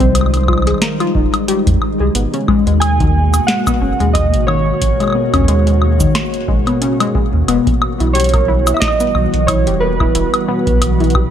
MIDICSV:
0, 0, Header, 1, 6, 480
1, 0, Start_track
1, 0, Tempo, 666667
1, 1548, Time_signature, 4, 2, 24, 8
1, 8139, End_track
2, 0, Start_track
2, 0, Title_t, "Synth keys"
2, 0, Program_c, 0, 88
2, 0, Note_on_c, 0, 72, 89
2, 794, Note_off_c, 0, 72, 0
2, 2018, Note_on_c, 0, 80, 110
2, 2497, Note_on_c, 0, 78, 112
2, 2517, Note_off_c, 0, 80, 0
2, 2954, Note_off_c, 0, 78, 0
2, 2977, Note_on_c, 0, 75, 104
2, 3205, Note_off_c, 0, 75, 0
2, 3216, Note_on_c, 0, 73, 90
2, 5113, Note_off_c, 0, 73, 0
2, 5857, Note_on_c, 0, 73, 104
2, 6269, Note_off_c, 0, 73, 0
2, 6294, Note_on_c, 0, 76, 85
2, 6338, Note_on_c, 0, 75, 120
2, 6343, Note_off_c, 0, 76, 0
2, 6818, Note_on_c, 0, 73, 103
2, 6838, Note_off_c, 0, 75, 0
2, 7059, Note_on_c, 0, 71, 89
2, 7070, Note_off_c, 0, 73, 0
2, 8139, Note_off_c, 0, 71, 0
2, 8139, End_track
3, 0, Start_track
3, 0, Title_t, "Synth pluck"
3, 0, Program_c, 1, 84
3, 3, Note_on_c, 1, 60, 107
3, 99, Note_off_c, 1, 60, 0
3, 348, Note_on_c, 1, 65, 75
3, 471, Note_off_c, 1, 65, 0
3, 483, Note_on_c, 1, 68, 78
3, 521, Note_off_c, 1, 68, 0
3, 588, Note_on_c, 1, 70, 81
3, 670, Note_off_c, 1, 70, 0
3, 722, Note_on_c, 1, 65, 101
3, 819, Note_off_c, 1, 65, 0
3, 828, Note_on_c, 1, 63, 74
3, 877, Note_off_c, 1, 63, 0
3, 1068, Note_on_c, 1, 67, 84
3, 1150, Note_off_c, 1, 67, 0
3, 1442, Note_on_c, 1, 68, 76
3, 1481, Note_off_c, 1, 68, 0
3, 1548, Note_on_c, 1, 59, 86
3, 1597, Note_off_c, 1, 59, 0
3, 1683, Note_on_c, 1, 61, 79
3, 1747, Note_off_c, 1, 61, 0
3, 1788, Note_on_c, 1, 56, 109
3, 1911, Note_off_c, 1, 56, 0
3, 1923, Note_on_c, 1, 56, 78
3, 1987, Note_off_c, 1, 56, 0
3, 2162, Note_on_c, 1, 51, 98
3, 2259, Note_off_c, 1, 51, 0
3, 2508, Note_on_c, 1, 56, 83
3, 2631, Note_off_c, 1, 56, 0
3, 2643, Note_on_c, 1, 59, 78
3, 2681, Note_off_c, 1, 59, 0
3, 2748, Note_on_c, 1, 61, 74
3, 2830, Note_off_c, 1, 61, 0
3, 2882, Note_on_c, 1, 56, 102
3, 2979, Note_off_c, 1, 56, 0
3, 2988, Note_on_c, 1, 56, 85
3, 3070, Note_off_c, 1, 56, 0
3, 3227, Note_on_c, 1, 51, 101
3, 3351, Note_off_c, 1, 51, 0
3, 3602, Note_on_c, 1, 56, 79
3, 3699, Note_off_c, 1, 56, 0
3, 3708, Note_on_c, 1, 59, 80
3, 3757, Note_off_c, 1, 59, 0
3, 3842, Note_on_c, 1, 61, 82
3, 3907, Note_off_c, 1, 61, 0
3, 3947, Note_on_c, 1, 56, 102
3, 4071, Note_off_c, 1, 56, 0
3, 4082, Note_on_c, 1, 56, 81
3, 4147, Note_off_c, 1, 56, 0
3, 4322, Note_on_c, 1, 51, 99
3, 4419, Note_off_c, 1, 51, 0
3, 4668, Note_on_c, 1, 56, 77
3, 4791, Note_off_c, 1, 56, 0
3, 4803, Note_on_c, 1, 59, 78
3, 4841, Note_off_c, 1, 59, 0
3, 4908, Note_on_c, 1, 61, 86
3, 4990, Note_off_c, 1, 61, 0
3, 5043, Note_on_c, 1, 56, 102
3, 5139, Note_off_c, 1, 56, 0
3, 5148, Note_on_c, 1, 56, 78
3, 5230, Note_off_c, 1, 56, 0
3, 5388, Note_on_c, 1, 59, 107
3, 5511, Note_off_c, 1, 59, 0
3, 5762, Note_on_c, 1, 64, 77
3, 5859, Note_off_c, 1, 64, 0
3, 5868, Note_on_c, 1, 67, 86
3, 5917, Note_off_c, 1, 67, 0
3, 6002, Note_on_c, 1, 70, 77
3, 6067, Note_off_c, 1, 70, 0
3, 6108, Note_on_c, 1, 64, 96
3, 6231, Note_off_c, 1, 64, 0
3, 6242, Note_on_c, 1, 64, 77
3, 6307, Note_off_c, 1, 64, 0
3, 6483, Note_on_c, 1, 59, 100
3, 6579, Note_off_c, 1, 59, 0
3, 6829, Note_on_c, 1, 64, 84
3, 6951, Note_off_c, 1, 64, 0
3, 6962, Note_on_c, 1, 67, 82
3, 7001, Note_off_c, 1, 67, 0
3, 7068, Note_on_c, 1, 70, 75
3, 7150, Note_off_c, 1, 70, 0
3, 7203, Note_on_c, 1, 64, 101
3, 7299, Note_off_c, 1, 64, 0
3, 7309, Note_on_c, 1, 64, 86
3, 7390, Note_off_c, 1, 64, 0
3, 7548, Note_on_c, 1, 59, 106
3, 7671, Note_off_c, 1, 59, 0
3, 7923, Note_on_c, 1, 64, 76
3, 8019, Note_off_c, 1, 64, 0
3, 8028, Note_on_c, 1, 67, 78
3, 8077, Note_off_c, 1, 67, 0
3, 8139, End_track
4, 0, Start_track
4, 0, Title_t, "Ambient pad"
4, 0, Program_c, 2, 92
4, 0, Note_on_c, 2, 51, 85
4, 0, Note_on_c, 2, 55, 74
4, 0, Note_on_c, 2, 56, 73
4, 0, Note_on_c, 2, 63, 89
4, 1520, Note_off_c, 2, 51, 0
4, 1520, Note_off_c, 2, 55, 0
4, 1529, Note_off_c, 2, 63, 0
4, 1549, Note_on_c, 2, 47, 83
4, 1549, Note_on_c, 2, 58, 76
4, 1549, Note_on_c, 2, 66, 90
4, 5359, Note_off_c, 2, 66, 0
4, 5360, Note_off_c, 2, 47, 0
4, 5360, Note_off_c, 2, 56, 0
4, 5360, Note_off_c, 2, 58, 0
4, 5388, Note_on_c, 2, 59, 79
4, 5388, Note_on_c, 2, 66, 90
4, 5389, Note_on_c, 2, 52, 84
4, 5389, Note_on_c, 2, 55, 74
4, 8139, Note_off_c, 2, 52, 0
4, 8139, Note_off_c, 2, 55, 0
4, 8139, Note_off_c, 2, 59, 0
4, 8139, Note_off_c, 2, 66, 0
4, 8139, End_track
5, 0, Start_track
5, 0, Title_t, "Sub bass"
5, 0, Program_c, 3, 38
5, 2, Note_on_c, 3, 36, 92
5, 528, Note_off_c, 3, 36, 0
5, 828, Note_on_c, 3, 29, 88
5, 914, Note_off_c, 3, 29, 0
5, 1202, Note_on_c, 3, 41, 105
5, 1270, Note_off_c, 3, 41, 0
5, 1443, Note_on_c, 3, 36, 91
5, 1511, Note_off_c, 3, 36, 0
5, 1548, Note_on_c, 3, 32, 103
5, 1634, Note_off_c, 3, 32, 0
5, 1923, Note_on_c, 3, 39, 93
5, 2448, Note_off_c, 3, 39, 0
5, 2748, Note_on_c, 3, 30, 92
5, 2834, Note_off_c, 3, 30, 0
5, 2882, Note_on_c, 3, 39, 82
5, 3123, Note_on_c, 3, 32, 88
5, 3133, Note_off_c, 3, 39, 0
5, 3408, Note_off_c, 3, 32, 0
5, 3467, Note_on_c, 3, 32, 96
5, 3554, Note_off_c, 3, 32, 0
5, 3842, Note_on_c, 3, 39, 92
5, 4367, Note_off_c, 3, 39, 0
5, 4668, Note_on_c, 3, 32, 89
5, 4754, Note_off_c, 3, 32, 0
5, 5283, Note_on_c, 3, 39, 96
5, 5350, Note_off_c, 3, 39, 0
5, 5388, Note_on_c, 3, 28, 100
5, 5474, Note_off_c, 3, 28, 0
5, 5763, Note_on_c, 3, 35, 91
5, 6288, Note_off_c, 3, 35, 0
5, 6588, Note_on_c, 3, 35, 87
5, 6675, Note_off_c, 3, 35, 0
5, 6723, Note_on_c, 3, 35, 86
5, 6963, Note_on_c, 3, 28, 86
5, 6973, Note_off_c, 3, 35, 0
5, 7248, Note_off_c, 3, 28, 0
5, 7308, Note_on_c, 3, 28, 93
5, 7395, Note_off_c, 3, 28, 0
5, 7682, Note_on_c, 3, 35, 92
5, 8139, Note_off_c, 3, 35, 0
5, 8139, End_track
6, 0, Start_track
6, 0, Title_t, "Drums"
6, 2, Note_on_c, 9, 36, 111
6, 3, Note_on_c, 9, 42, 34
6, 74, Note_off_c, 9, 36, 0
6, 75, Note_off_c, 9, 42, 0
6, 108, Note_on_c, 9, 42, 76
6, 108, Note_on_c, 9, 76, 46
6, 153, Note_off_c, 9, 76, 0
6, 153, Note_on_c, 9, 76, 40
6, 180, Note_off_c, 9, 42, 0
6, 188, Note_off_c, 9, 76, 0
6, 188, Note_on_c, 9, 76, 32
6, 243, Note_off_c, 9, 76, 0
6, 243, Note_on_c, 9, 42, 36
6, 243, Note_on_c, 9, 76, 27
6, 268, Note_off_c, 9, 76, 0
6, 268, Note_on_c, 9, 76, 20
6, 313, Note_off_c, 9, 76, 0
6, 313, Note_on_c, 9, 76, 17
6, 315, Note_off_c, 9, 42, 0
6, 348, Note_off_c, 9, 76, 0
6, 348, Note_on_c, 9, 36, 122
6, 348, Note_on_c, 9, 76, 72
6, 382, Note_off_c, 9, 76, 0
6, 382, Note_on_c, 9, 76, 58
6, 415, Note_off_c, 9, 76, 0
6, 415, Note_on_c, 9, 76, 46
6, 420, Note_off_c, 9, 36, 0
6, 449, Note_off_c, 9, 76, 0
6, 449, Note_on_c, 9, 76, 39
6, 482, Note_off_c, 9, 76, 0
6, 482, Note_on_c, 9, 42, 54
6, 482, Note_on_c, 9, 76, 32
6, 508, Note_off_c, 9, 76, 0
6, 508, Note_on_c, 9, 76, 26
6, 535, Note_off_c, 9, 76, 0
6, 535, Note_on_c, 9, 76, 22
6, 554, Note_off_c, 9, 42, 0
6, 562, Note_off_c, 9, 76, 0
6, 562, Note_on_c, 9, 76, 18
6, 588, Note_on_c, 9, 38, 123
6, 588, Note_on_c, 9, 42, 84
6, 634, Note_off_c, 9, 76, 0
6, 660, Note_off_c, 9, 38, 0
6, 660, Note_off_c, 9, 42, 0
6, 722, Note_on_c, 9, 42, 35
6, 722, Note_on_c, 9, 76, 50
6, 794, Note_off_c, 9, 42, 0
6, 794, Note_off_c, 9, 76, 0
6, 828, Note_on_c, 9, 36, 112
6, 900, Note_off_c, 9, 36, 0
6, 962, Note_on_c, 9, 42, 35
6, 962, Note_on_c, 9, 76, 71
6, 1034, Note_off_c, 9, 42, 0
6, 1034, Note_off_c, 9, 76, 0
6, 1068, Note_on_c, 9, 42, 80
6, 1140, Note_off_c, 9, 42, 0
6, 1202, Note_on_c, 9, 36, 122
6, 1202, Note_on_c, 9, 42, 52
6, 1274, Note_off_c, 9, 36, 0
6, 1274, Note_off_c, 9, 42, 0
6, 1308, Note_on_c, 9, 76, 49
6, 1380, Note_off_c, 9, 76, 0
6, 1548, Note_on_c, 9, 42, 76
6, 1620, Note_off_c, 9, 42, 0
6, 1682, Note_on_c, 9, 42, 35
6, 1754, Note_off_c, 9, 42, 0
6, 1787, Note_on_c, 9, 36, 106
6, 1787, Note_on_c, 9, 76, 47
6, 1859, Note_off_c, 9, 36, 0
6, 1859, Note_off_c, 9, 76, 0
6, 1922, Note_on_c, 9, 42, 33
6, 1994, Note_off_c, 9, 42, 0
6, 2027, Note_on_c, 9, 42, 76
6, 2027, Note_on_c, 9, 76, 75
6, 2099, Note_off_c, 9, 42, 0
6, 2099, Note_off_c, 9, 76, 0
6, 2162, Note_on_c, 9, 36, 121
6, 2162, Note_on_c, 9, 42, 33
6, 2234, Note_off_c, 9, 36, 0
6, 2234, Note_off_c, 9, 42, 0
6, 2402, Note_on_c, 9, 42, 51
6, 2402, Note_on_c, 9, 69, 81
6, 2402, Note_on_c, 9, 76, 53
6, 2474, Note_off_c, 9, 42, 0
6, 2474, Note_off_c, 9, 69, 0
6, 2474, Note_off_c, 9, 76, 0
6, 2508, Note_on_c, 9, 38, 122
6, 2508, Note_on_c, 9, 42, 78
6, 2580, Note_off_c, 9, 38, 0
6, 2580, Note_off_c, 9, 42, 0
6, 2642, Note_on_c, 9, 36, 106
6, 2642, Note_on_c, 9, 42, 35
6, 2642, Note_on_c, 9, 69, 79
6, 2642, Note_on_c, 9, 76, 75
6, 2714, Note_off_c, 9, 36, 0
6, 2714, Note_off_c, 9, 42, 0
6, 2714, Note_off_c, 9, 69, 0
6, 2714, Note_off_c, 9, 76, 0
6, 2882, Note_on_c, 9, 42, 33
6, 2954, Note_off_c, 9, 42, 0
6, 2987, Note_on_c, 9, 36, 117
6, 2988, Note_on_c, 9, 42, 76
6, 2988, Note_on_c, 9, 76, 49
6, 3059, Note_off_c, 9, 36, 0
6, 3060, Note_off_c, 9, 42, 0
6, 3060, Note_off_c, 9, 76, 0
6, 3122, Note_on_c, 9, 42, 48
6, 3194, Note_off_c, 9, 42, 0
6, 3228, Note_on_c, 9, 76, 80
6, 3300, Note_off_c, 9, 76, 0
6, 3467, Note_on_c, 9, 36, 103
6, 3467, Note_on_c, 9, 42, 76
6, 3539, Note_off_c, 9, 36, 0
6, 3539, Note_off_c, 9, 42, 0
6, 3602, Note_on_c, 9, 42, 34
6, 3602, Note_on_c, 9, 76, 22
6, 3620, Note_off_c, 9, 76, 0
6, 3620, Note_on_c, 9, 76, 27
6, 3628, Note_off_c, 9, 76, 0
6, 3628, Note_on_c, 9, 76, 33
6, 3655, Note_off_c, 9, 76, 0
6, 3655, Note_on_c, 9, 76, 36
6, 3672, Note_off_c, 9, 76, 0
6, 3672, Note_on_c, 9, 76, 38
6, 3674, Note_off_c, 9, 42, 0
6, 3690, Note_off_c, 9, 76, 0
6, 3690, Note_on_c, 9, 76, 43
6, 3762, Note_off_c, 9, 76, 0
6, 3842, Note_on_c, 9, 36, 52
6, 3842, Note_on_c, 9, 42, 33
6, 3842, Note_on_c, 9, 76, 75
6, 3868, Note_off_c, 9, 36, 0
6, 3868, Note_on_c, 9, 36, 67
6, 3895, Note_off_c, 9, 36, 0
6, 3895, Note_on_c, 9, 36, 80
6, 3914, Note_off_c, 9, 42, 0
6, 3914, Note_off_c, 9, 76, 0
6, 3921, Note_off_c, 9, 36, 0
6, 3921, Note_on_c, 9, 36, 96
6, 3947, Note_on_c, 9, 42, 72
6, 3993, Note_off_c, 9, 36, 0
6, 4019, Note_off_c, 9, 42, 0
6, 4082, Note_on_c, 9, 42, 34
6, 4154, Note_off_c, 9, 42, 0
6, 4188, Note_on_c, 9, 76, 51
6, 4260, Note_off_c, 9, 76, 0
6, 4322, Note_on_c, 9, 36, 108
6, 4322, Note_on_c, 9, 42, 51
6, 4322, Note_on_c, 9, 69, 81
6, 4394, Note_off_c, 9, 36, 0
6, 4394, Note_off_c, 9, 42, 0
6, 4394, Note_off_c, 9, 69, 0
6, 4428, Note_on_c, 9, 38, 118
6, 4428, Note_on_c, 9, 42, 79
6, 4428, Note_on_c, 9, 76, 79
6, 4500, Note_off_c, 9, 38, 0
6, 4500, Note_off_c, 9, 42, 0
6, 4500, Note_off_c, 9, 76, 0
6, 4563, Note_on_c, 9, 42, 33
6, 4635, Note_off_c, 9, 42, 0
6, 4668, Note_on_c, 9, 36, 119
6, 4740, Note_off_c, 9, 36, 0
6, 4803, Note_on_c, 9, 42, 34
6, 4803, Note_on_c, 9, 76, 53
6, 4875, Note_off_c, 9, 42, 0
6, 4875, Note_off_c, 9, 76, 0
6, 4908, Note_on_c, 9, 42, 74
6, 4980, Note_off_c, 9, 42, 0
6, 5043, Note_on_c, 9, 42, 51
6, 5043, Note_on_c, 9, 76, 76
6, 5115, Note_off_c, 9, 42, 0
6, 5115, Note_off_c, 9, 76, 0
6, 5148, Note_on_c, 9, 36, 102
6, 5220, Note_off_c, 9, 36, 0
6, 5388, Note_on_c, 9, 42, 77
6, 5388, Note_on_c, 9, 76, 51
6, 5460, Note_off_c, 9, 42, 0
6, 5460, Note_off_c, 9, 76, 0
6, 5522, Note_on_c, 9, 36, 114
6, 5523, Note_on_c, 9, 42, 35
6, 5594, Note_off_c, 9, 36, 0
6, 5595, Note_off_c, 9, 42, 0
6, 5628, Note_on_c, 9, 76, 75
6, 5700, Note_off_c, 9, 76, 0
6, 5762, Note_on_c, 9, 42, 35
6, 5834, Note_off_c, 9, 42, 0
6, 5868, Note_on_c, 9, 42, 73
6, 5902, Note_off_c, 9, 42, 0
6, 5902, Note_on_c, 9, 42, 61
6, 5935, Note_off_c, 9, 42, 0
6, 5935, Note_on_c, 9, 42, 50
6, 5969, Note_off_c, 9, 42, 0
6, 5969, Note_on_c, 9, 42, 39
6, 6002, Note_off_c, 9, 42, 0
6, 6002, Note_on_c, 9, 36, 96
6, 6002, Note_on_c, 9, 42, 36
6, 6002, Note_on_c, 9, 76, 53
6, 6074, Note_off_c, 9, 36, 0
6, 6074, Note_off_c, 9, 42, 0
6, 6074, Note_off_c, 9, 76, 0
6, 6242, Note_on_c, 9, 42, 52
6, 6242, Note_on_c, 9, 69, 84
6, 6242, Note_on_c, 9, 76, 76
6, 6312, Note_off_c, 9, 76, 0
6, 6312, Note_on_c, 9, 76, 64
6, 6314, Note_off_c, 9, 42, 0
6, 6314, Note_off_c, 9, 69, 0
6, 6347, Note_on_c, 9, 38, 116
6, 6347, Note_on_c, 9, 42, 79
6, 6348, Note_on_c, 9, 36, 121
6, 6384, Note_off_c, 9, 76, 0
6, 6393, Note_on_c, 9, 76, 54
6, 6419, Note_off_c, 9, 38, 0
6, 6419, Note_off_c, 9, 42, 0
6, 6420, Note_off_c, 9, 36, 0
6, 6465, Note_off_c, 9, 76, 0
6, 6482, Note_on_c, 9, 42, 38
6, 6482, Note_on_c, 9, 69, 83
6, 6554, Note_off_c, 9, 42, 0
6, 6554, Note_off_c, 9, 69, 0
6, 6588, Note_on_c, 9, 76, 51
6, 6660, Note_off_c, 9, 76, 0
6, 6722, Note_on_c, 9, 42, 34
6, 6794, Note_off_c, 9, 42, 0
6, 6828, Note_on_c, 9, 36, 99
6, 6828, Note_on_c, 9, 42, 81
6, 6828, Note_on_c, 9, 76, 85
6, 6900, Note_off_c, 9, 36, 0
6, 6900, Note_off_c, 9, 42, 0
6, 6900, Note_off_c, 9, 76, 0
6, 6962, Note_on_c, 9, 42, 53
6, 7034, Note_off_c, 9, 42, 0
6, 7202, Note_on_c, 9, 36, 115
6, 7202, Note_on_c, 9, 76, 56
6, 7274, Note_off_c, 9, 36, 0
6, 7274, Note_off_c, 9, 76, 0
6, 7308, Note_on_c, 9, 42, 79
6, 7380, Note_off_c, 9, 42, 0
6, 7442, Note_on_c, 9, 42, 38
6, 7442, Note_on_c, 9, 76, 83
6, 7514, Note_off_c, 9, 42, 0
6, 7514, Note_off_c, 9, 76, 0
6, 7682, Note_on_c, 9, 36, 108
6, 7682, Note_on_c, 9, 42, 38
6, 7754, Note_off_c, 9, 36, 0
6, 7754, Note_off_c, 9, 42, 0
6, 7788, Note_on_c, 9, 42, 81
6, 7788, Note_on_c, 9, 76, 57
6, 7860, Note_off_c, 9, 42, 0
6, 7860, Note_off_c, 9, 76, 0
6, 7923, Note_on_c, 9, 42, 17
6, 7948, Note_off_c, 9, 42, 0
6, 7948, Note_on_c, 9, 42, 23
6, 7993, Note_off_c, 9, 42, 0
6, 7993, Note_on_c, 9, 42, 29
6, 8028, Note_on_c, 9, 36, 115
6, 8028, Note_on_c, 9, 76, 81
6, 8065, Note_off_c, 9, 42, 0
6, 8100, Note_off_c, 9, 36, 0
6, 8100, Note_off_c, 9, 76, 0
6, 8139, End_track
0, 0, End_of_file